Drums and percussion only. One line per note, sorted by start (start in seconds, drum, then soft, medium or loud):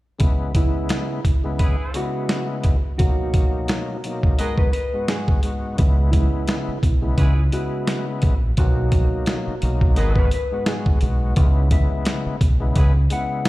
0.20 kick loud
0.20 closed hi-hat medium
0.55 kick loud
0.55 closed hi-hat medium
0.89 snare loud
0.89 closed hi-hat medium
1.25 kick medium
1.25 closed hi-hat medium
1.59 kick medium
1.59 closed hi-hat medium
1.94 closed hi-hat medium
2.29 snare loud
2.29 closed hi-hat medium
2.64 kick medium
2.64 closed hi-hat medium
2.99 kick loud
2.99 closed hi-hat medium
3.34 kick loud
3.34 closed hi-hat medium
3.68 snare loud
3.68 closed hi-hat medium
4.04 closed hi-hat medium
4.23 kick medium
4.39 closed hi-hat medium
4.58 kick medium
4.73 closed hi-hat medium
5.08 snare loud
5.08 closed hi-hat medium
5.28 kick medium
5.43 closed hi-hat medium
5.78 kick loud
5.78 closed hi-hat medium
6.13 kick medium
6.13 closed hi-hat medium
6.48 snare loud
6.48 closed hi-hat medium
6.83 kick medium
6.83 closed hi-hat medium
7.18 kick medium
7.18 closed hi-hat medium
7.52 closed hi-hat medium
7.87 snare loud
7.87 closed hi-hat medium
8.22 kick medium
8.22 closed hi-hat medium
8.57 kick loud
8.57 closed hi-hat medium
8.92 kick loud
8.92 closed hi-hat medium
9.26 snare loud
9.26 closed hi-hat medium
9.62 closed hi-hat medium
9.81 kick medium
9.96 snare soft
9.96 closed hi-hat medium
10.16 kick medium
10.31 closed hi-hat medium
10.66 snare loud
10.66 closed hi-hat medium
10.86 kick medium
11.01 closed hi-hat medium
11.36 kick loud
11.36 closed hi-hat medium
11.71 kick loud
11.71 closed hi-hat medium
12.05 snare loud
12.05 closed hi-hat loud
12.41 kick medium
12.41 closed hi-hat medium
12.76 kick loud
12.76 closed hi-hat medium
13.10 closed hi-hat medium
13.45 snare loud
13.45 closed hi-hat medium